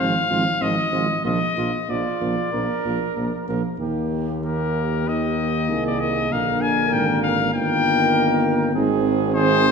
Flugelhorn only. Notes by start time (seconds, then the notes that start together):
0.00 F4
0.30 F4
0.60 F4
0.92 F4
1.25 F4
1.57 F4
1.90 F4
2.53 A#4
3.48 A#4
3.80 G4
4.44 G4
5.09 G4
5.70 G#4
6.32 A#4
7.54 A#4
8.75 G#4
9.36 G#4
9.68 G4